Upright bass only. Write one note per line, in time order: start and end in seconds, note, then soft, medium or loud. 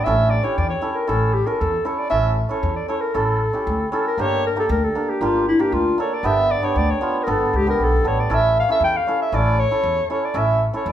0.06 0.37 A1 loud
0.58 0.73 E2 loud
1.09 1.40 A1 loud
1.61 1.76 E2 loud
2.12 2.43 A1 loud
2.63 2.78 E2 loud
3.15 3.46 A1 medium
3.67 3.82 D2 loud
4.18 4.49 G1 medium
4.69 4.85 D2 loud
5.21 5.52 G1 medium
5.72 5.88 D2 loud
6.23 6.54 G1 medium
6.76 6.91 D2 loud
7.27 7.43 G1 loud
7.53 7.76 C#2 medium
7.80 8.02 B1 medium
8.05 8.27 A1 medium
8.30 8.61 A1 medium
8.80 8.96 E2 loud
9.32 9.63 A1 loud
9.83 9.99 E2 loud
10.34 10.65 A1 loud
10.86 10.92 E2 loud